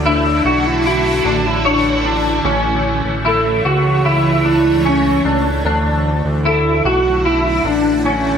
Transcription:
Already playing: D2 D3 A3 E4 F#4
0.06 D4 E4
0.45 B1 F#4
0.67 E4
0.86 E4 F#4
1.25 A1 D4
1.46 E4
1.65 D4 C#5
2.05 D4
2.45 A1 E3 C#4 C#5
3.05 A1
3.25 E4 A4
3.65 C#2 F#4
4.05 E4
4.45 D4
4.85 C#4
5.25 C#2 D4
5.65 D2 D3 A3 D4 E4 F#4
6.25 D2
6.45 E4 A4
6.85 B1 F#4
7.25 E4
7.61 A1 E4
7.65 D4
8.05 C#4

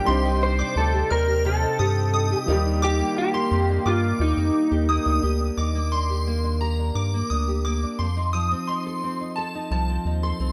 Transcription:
Already playing: F3 A#3 D4 G4 G5
0.05 C2 C3 G3 C4 D4 D#4 C5 C6
0.10 C5
0.25 D#4
0.42 G4 C5
0.59 D5 D6
0.76 D2 D#4 A4
0.94 G4
1.10 D#2 A#4 D5 F6
1.28 G4
1.45 C3 A4
1.61 D#4
1.79 G2 G4 D#6
2.13 D#4 D#6
2.31 G4
2.41 G4
2.46 D#2 D#3 F3 A#3 D#4
2.51 G3 G4
2.66 D4
2.82 D#3 G4 D6
3.00 A#3
3.17 D4 G4
3.34 G4 C6
3.51 F2 A#3
3.69 D4
3.85 G2 F4 G4 D6
4.19 D#2 D#4
4.37 F2 A#3
4.71 D#2 G4
4.89 A#3 D#6
5.05 D2 D4
5.23 D2 G4
5.40 D4
5.57 D#2 D#3 D6
5.75 A#3
5.92 D4 C6
6.10 G4
6.27 A#3
6.44 D4
6.61 G4 A#5
6.79 D4
6.95 G2 D6
7.14 A#3
7.30 D2 D4 D#6
7.48 G4
7.65 A#3 D6
7.83 D4
7.99 F2 F3 C6
8.17 D#4
8.33 F3 D#6
8.51 C4
8.67 D#4 C6
8.86 A4
9.04 C4
9.21 D#4
9.36 A4 A5
9.55 D#4
9.71 C2 F3 A5
9.89 C4
10.05 D#2 D#4
10.23 A4 C6
10.40 C2 C4

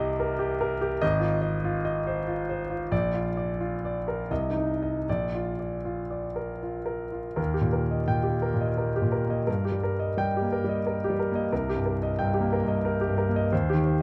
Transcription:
Already playing: C2 G4 D#5
0.20 A#4
0.39 G4
0.61 A#4
0.81 G4
1.01 G#1 D#5
1.20 F4
1.42 D#5
1.64 F4
1.85 D#5
2.07 C5
2.27 F4
2.49 C5
2.70 F4
2.91 A#1 D5
3.14 F4
3.37 D5
3.60 F4
3.85 D5
4.08 A#4
4.31 C2 D#5
4.50 D#4
4.57 D#4
4.82 D#5
5.09 A#1 D5
5.35 F4
5.59 D5
5.85 F4
6.10 D5
6.36 A#4
6.63 F4
6.86 A#4
7.12 F4
7.36 D#2 A#4
7.54 G4
7.61 A#2
7.73 A#4
7.91 D#5
8.08 A#2 G5
8.23 G4
8.30 A#3
8.42 A#4
8.54 A#2
8.61 D#5
8.78 A#4
8.96 G4
9.02 A#2
9.12 A#4
9.25 A#3
9.30 D#5
9.47 G2 A#4
9.65 G4
9.72 G3
9.83 A#4
10.00 D#5
10.17 G3 G5
10.37 G4
10.42 A#3
10.52 A#4
10.64 G3
10.69 D#5
10.87 A#4
11.04 G4
11.10 G3
11.19 A#4
11.32 A#3 D#5
11.53 C2 A#4
11.69 G4
11.75 G2
11.86 A#4
12.03 D#5
12.19 G2 G5
12.34 G4
12.40 A#3
12.53 A#4
12.63 G2
12.68 D#5
12.85 A#4
13.01 G4
13.07 G2
13.18 A#4
13.29 A#3
13.36 D#5
13.52 D#2 C5
13.69 G4
13.74 D#3
13.84 C5

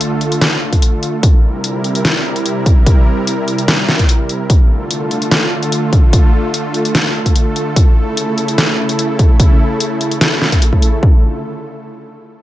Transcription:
Already playing: D3 A3 F4 A4
0.01 closed hi-hat
0.21 closed hi-hat
0.32 closed hi-hat
0.41 snare, closed hi-hat
0.73 kick, closed hi-hat
0.82 closed hi-hat
1.03 closed hi-hat
1.23 C3 G3 E4 A#4, kick, closed hi-hat
1.64 closed hi-hat
1.84 closed hi-hat
1.95 closed hi-hat
2.05 snare, closed hi-hat
2.36 closed hi-hat
2.46 closed hi-hat
2.66 kick, closed hi-hat
2.86 kick, closed hi-hat
3.27 closed hi-hat
3.48 closed hi-hat
3.58 closed hi-hat
3.68 snare, closed hi-hat
3.89 snare
3.99 kick, closed hi-hat
4.09 closed hi-hat
4.29 closed hi-hat
4.50 D3 A3 F4 A4, kick, closed hi-hat
4.91 closed hi-hat
5.11 closed hi-hat
5.22 closed hi-hat
5.31 snare, closed hi-hat
5.63 closed hi-hat
5.72 closed hi-hat
5.93 kick, closed hi-hat
6.13 kick, closed hi-hat
6.54 closed hi-hat
6.74 closed hi-hat
6.85 closed hi-hat
6.95 snare, closed hi-hat
7.26 kick, closed hi-hat
7.36 closed hi-hat
7.56 closed hi-hat
7.76 C#3 E4, kick, closed hi-hat
8.17 closed hi-hat
8.38 closed hi-hat
8.48 closed hi-hat
8.58 snare, closed hi-hat
8.89 closed hi-hat
8.99 closed hi-hat
9.19 kick, closed hi-hat
9.40 kick, closed hi-hat
9.80 closed hi-hat
10.01 closed hi-hat
10.11 closed hi-hat
10.21 snare, closed hi-hat
10.42 snare
10.52 kick, closed hi-hat
10.62 closed hi-hat
10.73 kick
10.82 closed hi-hat
11.03 D3 A3 F4 A4, kick

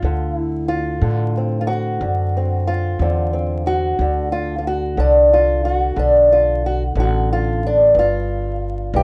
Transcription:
Already playing: F4
0.03 D2 D3
0.36 E4
0.68 F4
1.02 A2 D3
1.37 C4
1.61 F4
1.67 F#4
2.01 F#2 D3
2.37 C4
2.67 F4
2.99 E2 D3 C4
3.33 C4
3.67 F#4
3.99 D2 D3
4.32 F4
4.58 F4
4.67 F#4
4.97 C2 D3 D4
5.33 F4
5.65 F#4
5.96 B1 D3 D4
6.32 F4
6.66 F#4
6.95 A1 D3
7.00 F#4
7.33 F4
7.67 D4
7.95 G1 G2
7.99 F4
8.94 B1 G2 G4

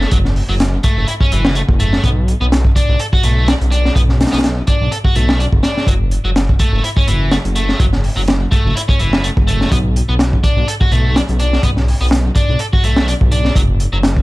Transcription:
Already playing: A3
0.01 snare
0.11 F#1 F#3, kick, closed hi-hat
0.25 snare
0.36 open hi-hat
0.49 F#1 F#3
0.60 snare, closed hi-hat
0.83 A3, kick, closed hi-hat
0.97 F#1
1.08 E4, closed hi-hat
1.21 C#4, kick
1.32 F#1 E3, closed hi-hat
1.45 snare
1.55 A3, closed hi-hat
1.69 F#1, kick
1.80 A3, closed hi-hat
1.93 snare
2.04 B1 B3, kick, closed hi-hat
2.28 closed hi-hat
2.41 B1 B3
2.52 snare, closed hi-hat
2.65 kick
2.76 D4, kick, closed hi-hat
2.89 B1
2.99 A4, closed hi-hat
3.13 F#4, kick
3.23 B1 A3, closed hi-hat
3.47 D4, snare, closed hi-hat
3.61 B1, closed hi-hat
3.71 D4, closed hi-hat
3.85 snare
3.95 B1 B3, kick, closed hi-hat
4.09 snare
4.21 snare, closed hi-hat
4.27 snare, closed hi-hat
4.32 B1 B3, snare, closed hi-hat
4.38 snare, closed hi-hat
4.44 snare, closed hi-hat
4.67 D4, kick, closed hi-hat
4.81 B1
4.91 A4, closed hi-hat
5.05 F#4, kick
5.15 B1 A3, closed hi-hat
5.29 snare
5.39 D4, closed hi-hat
5.53 F#1, kick
5.63 D4, snare, closed hi-hat
5.77 snare
5.87 F#1 F#3, kick, closed hi-hat
6.11 closed hi-hat
6.25 F#1 F#3
6.36 snare, closed hi-hat
6.49 kick
6.59 A3, kick, closed hi-hat
6.73 F#1
6.83 E4, closed hi-hat
6.97 C#4, kick
7.07 F#1 E3, closed hi-hat
7.31 A3, snare, closed hi-hat
7.45 F#1, closed hi-hat
7.55 A3, closed hi-hat
7.69 snare
7.79 F#1 F#3, kick, closed hi-hat
7.93 snare
8.04 open hi-hat
8.17 F#1 F#3
8.28 snare, closed hi-hat
8.51 A3, kick, closed hi-hat
8.65 F#1
8.75 E4, closed hi-hat
8.88 C#4, kick
8.99 F#1 E3, closed hi-hat
9.13 snare
9.23 A3, closed hi-hat
9.37 F#1, kick
9.47 A3, closed hi-hat
9.61 snare
9.71 B1 B3, kick, closed hi-hat
9.96 closed hi-hat
10.09 B1 B3
10.19 snare, closed hi-hat
10.33 kick
10.43 D4, kick, closed hi-hat
10.57 B1
10.68 A4, closed hi-hat
10.81 F#4, kick
10.91 B1 A3, closed hi-hat
11.15 D4, snare, closed hi-hat
11.29 B1, closed hi-hat
11.39 D4, closed hi-hat
11.53 snare
11.63 B1 B3, kick, closed hi-hat
11.77 snare
11.88 open hi-hat
12.01 B1 B3
12.11 snare, closed hi-hat
12.35 D4, kick, closed hi-hat
12.49 B1
12.59 A4, closed hi-hat
12.73 F#4, kick
12.84 B1 A3, closed hi-hat
12.96 snare
13.08 D4, closed hi-hat
13.21 B1, kick
13.32 D4, closed hi-hat
13.45 snare
13.56 F#1 F#3, kick, closed hi-hat
13.80 closed hi-hat
13.93 F#1 F#3
14.03 snare, closed hi-hat
14.17 kick

